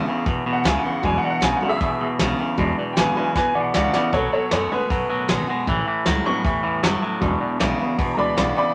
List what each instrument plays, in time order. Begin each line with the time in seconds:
Already playing: steel-string acoustic guitar E2, honky-tonk piano G#4 E5
0.06 clean electric guitar E2 C#3, steel-string acoustic guitar B3 E4
0.26 upright bass B1, clean electric guitar E2 B2, steel-string acoustic guitar B2, kick, open hi-hat
0.45 upright bass B1, clean electric guitar E2 B2
0.53 honky-tonk piano F#5
0.64 upright bass C#2, clean electric guitar E2 C#3, steel-string acoustic guitar D3 G#3 B3 E4, honky-tonk piano G#5, snare
0.79 honky-tonk piano F#5
0.83 clean electric guitar E2 C#3, steel-string acoustic guitar B3 E4
0.92 honky-tonk piano F#5
1.03 upright bass E1, steel-string acoustic guitar E2, clean electric guitar E2 B2, honky-tonk piano F#3 G#3 D4 G#5, kick, open hi-hat
1.18 honky-tonk piano F#5
1.23 clean electric guitar E2 B2
1.30 honky-tonk piano F#5
1.41 upright bass B1, clean electric guitar E2 C#3, steel-string acoustic guitar D3 G#3 B3 E4, honky-tonk piano G#5, snare, open hi-hat
1.57 honky-tonk piano F#5, muted upright bass stroke
1.61 clean electric guitar E2 C#3, honky-tonk piano F#3 G#3 D4, steel-string acoustic guitar B3 E4
1.69 honky-tonk piano G#4 E5
1.81 upright bass B1, clean electric guitar E2 B2, steel-string acoustic guitar B2, kick, open hi-hat
2.00 clean electric guitar E2 B2
2.19 upright bass B1, clean electric guitar E2 C#3, steel-string acoustic guitar D3 G#3 B3 E4, snare, open hi-hat
2.38 clean electric guitar E2 C#3, steel-string acoustic guitar B3 E4
2.57 upright bass E1, steel-string acoustic guitar E2, clean electric guitar E2 B2, honky-tonk piano F#3 G#3 D4, kick, open hi-hat
2.78 clean electric guitar E2 B2
2.93 clean electric guitar E2 C#3, steel-string acoustic guitar D3, honky-tonk piano G5, snare
2.97 upright bass G#1, steel-string acoustic guitar G#3 B3 E4, honky-tonk piano B4 G#5
3.15 clean electric guitar E2 C#3, honky-tonk piano F#3 G#3 D4 B4 G#5, steel-string acoustic guitar B3 E4
3.36 clean electric guitar E2 B2, steel-string acoustic guitar B2, honky-tonk piano B4 G#5, kick, snare
3.55 upright bass B1, clean electric guitar E2 B2, honky-tonk piano D5 F#5
3.74 upright bass C#2, clean electric guitar E2 C#3, steel-string acoustic guitar D3 G#3 B3 E4, honky-tonk piano D5 F#5, snare
3.93 clean electric guitar E2 C#3, steel-string acoustic guitar B3 E4, honky-tonk piano D5 F#5, snare
4.12 upright bass B1, clean electric guitar B2 F#3, steel-string acoustic guitar B2, honky-tonk piano A4 C#5, kick, open hi-hat
4.33 clean electric guitar B2 F#3, honky-tonk piano A4 C#5
4.51 upright bass F#2, clean electric guitar B2 G#3, steel-string acoustic guitar D#3 A3 B3 F#4, honky-tonk piano A4 C#5, snare, open hi-hat
4.71 clean electric guitar B2 G#3, honky-tonk piano D#3 A3 C#4 B4, steel-string acoustic guitar B3 F#4, muted upright bass stroke
4.90 upright bass F#2, steel-string acoustic guitar F#2, clean electric guitar B2 F#3, kick, open hi-hat
5.10 upright bass A2, clean electric guitar B2 F#3
5.28 upright bass G#1, clean electric guitar B2 G#3, steel-string acoustic guitar D#3 A3 B3 F#4, snare, open hi-hat
5.47 clean electric guitar B2 G#3, steel-string acoustic guitar B3 F#4
5.67 upright bass A1, steel-string acoustic guitar A2, clean electric guitar A2 E3, kick, open hi-hat
5.87 clean electric guitar A2 E3, muted upright bass stroke
6.06 upright bass C#2, clean electric guitar A2 F#3, steel-string acoustic guitar E3 G3 C#4 E4, snare
6.24 clean electric guitar A2 F#3, honky-tonk piano G3 B3 C#4 C#6, steel-string acoustic guitar C#4 E4
6.44 upright bass E2, steel-string acoustic guitar E2, clean electric guitar A2 E3, kick, open hi-hat
6.63 upright bass E2, clean electric guitar A2 E3
6.83 upright bass F#1, clean electric guitar A2 F#3, steel-string acoustic guitar E3 G3 C#4 E4, honky-tonk piano A5, snare
7.02 clean electric guitar A2 F#3, steel-string acoustic guitar C#4 E4, muted upright bass stroke
7.21 upright bass E1, clean electric guitar E2 B2, steel-string acoustic guitar E2, honky-tonk piano F#3 G#3 D4, kick, open hi-hat
7.41 clean electric guitar E2 B2, muted upright bass stroke
7.60 upright bass B1, clean electric guitar E2 C#3, steel-string acoustic guitar D3 G#3 B3 E4, snare, open hi-hat
7.79 clean electric guitar E2 C#3, steel-string acoustic guitar B3 E4, muted upright bass stroke
7.98 upright bass B1, clean electric guitar E2 B2, steel-string acoustic guitar B2, kick, open hi-hat
8.14 upright bass D2, clean electric guitar E2 B2, honky-tonk piano F#3 G#3 D4 D5 A#5
8.19 honky-tonk piano B5
8.36 upright bass B1, clean electric guitar E2 C#3, steel-string acoustic guitar D3 G#3 B3 E4, honky-tonk piano D5 B5, snare, open hi-hat
8.56 clean electric guitar E2 C#3, steel-string acoustic guitar B3 E4, honky-tonk piano D5 B5, muted upright bass stroke